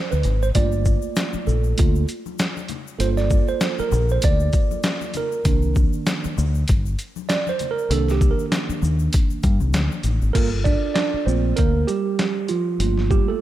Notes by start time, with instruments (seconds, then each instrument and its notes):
Already playing: tine electric piano C5
0.11 fingered electric bass D2, tine electric piano B4, high conga, shaker
0.23 fingered electric bass G#1, closed hi-hat, low conga, shaker
0.43 tine electric piano C5, shaker
0.55 fingered electric bass G1, tine electric piano A3 A#3 F4 D5, kick, closed hi-hat, shaker
0.72 shaker
0.85 kick, shaker
1.02 shaker
1.16 snare, closed hi-hat, shaker
1.33 muted fingered electric bass stroke, high conga, shaker
1.47 fingered electric bass A#1, tine electric piano A4, low conga, shaker
1.49 shaker
1.64 shaker
1.77 fingered electric bass D2, tine electric piano A3 A#3 F4, kick, closed hi-hat, shaker
1.95 shaker
2.08 closed hi-hat, shaker
2.26 high conga, shaker
2.38 snare, closed hi-hat, shaker
2.57 high conga, shaker
2.68 closed hi-hat, low conga, shaker
2.87 shaker
2.98 fingered electric bass G1, tine electric piano A#3 F4 A4 C5, closed hi-hat, shaker
3.17 tine electric piano D5, snare, shaker
3.30 kick, shaker
3.48 tine electric piano C5, shaker
3.61 snare, closed hi-hat, shaker
3.79 tine electric piano A#4, muted fingered electric bass stroke, high conga, shaker
3.92 fingered electric bass A#1, low conga, shaker
3.93 shaker
4.09 tine electric piano C5, shaker
4.22 fingered electric bass D2, tine electric piano D5, kick, closed hi-hat, shaker
4.40 shaker
4.52 kick, closed hi-hat, shaker
4.71 high conga, shaker
4.83 snare, closed hi-hat, shaker
5.01 high conga, shaker
5.14 tine electric piano A#4, closed hi-hat, low conga, shaker
5.32 shaker
5.45 fingered electric bass C2, tine electric piano D#3 A#3 D4, kick, closed hi-hat, shaker
5.62 shaker
5.75 kick, shaker
5.93 shaker
6.06 snare, closed hi-hat, shaker
6.24 muted fingered electric bass stroke, high conga, shaker
6.38 fingered electric bass D2, low conga, shaker
6.55 shaker
6.68 fingered electric bass G1, kick, closed hi-hat, shaker
6.86 shaker
6.98 closed hi-hat, shaker
7.16 high conga, shaker
7.29 tine electric piano D5, snare, closed hi-hat, shaker
7.47 tine electric piano C5, high conga, shaker
7.59 closed hi-hat, low conga, shaker
7.71 tine electric piano A#4
7.78 shaker
7.90 fingered electric bass C2, tine electric piano D#3 A#3 D4 A4, closed hi-hat, shaker
8.09 tine electric piano G4, snare, shaker
8.21 kick, shaker
8.31 tine electric piano A#4
8.39 shaker
8.52 snare, closed hi-hat, shaker
8.69 muted fingered electric bass stroke, high conga, shaker
8.82 fingered electric bass D#2, low conga, shaker
8.84 shaker
8.99 shaker
9.13 kick, closed hi-hat, shaker
9.30 shaker
9.43 fingered electric bass G2, kick, closed hi-hat, shaker
9.60 fingered electric bass C2, high conga, shaker
9.73 fingered electric bass D2, snare, closed hi-hat, shaker
9.92 high conga, shaker
10.03 fingered electric bass A1, closed hi-hat, low conga, shaker
10.22 fingered electric bass G#1, shaker
10.33 fingered electric bass G1, tine electric piano A#3 F4 A4 A#4, kick, closed hi-hat, crash
10.64 tine electric piano D4 D5, kick, shaker
10.94 tine electric piano D4 D5, snare, closed hi-hat
11.14 muted fingered electric bass stroke
11.26 fingered electric bass A#1, tine electric piano A3 A#3 C4 F4 C5, shaker
11.56 fingered electric bass D2, tine electric piano A#3 A#4, kick, closed hi-hat
11.87 tine electric piano G3 G4, closed hi-hat, shaker
12.19 snare, closed hi-hat
12.48 tine electric piano F3 F4, closed hi-hat, shaker
12.80 fingered electric bass G1, tine electric piano A3 A#3 F4, closed hi-hat
12.98 snare
13.11 tine electric piano G3 G4, kick, shaker
13.28 tine electric piano A3 A4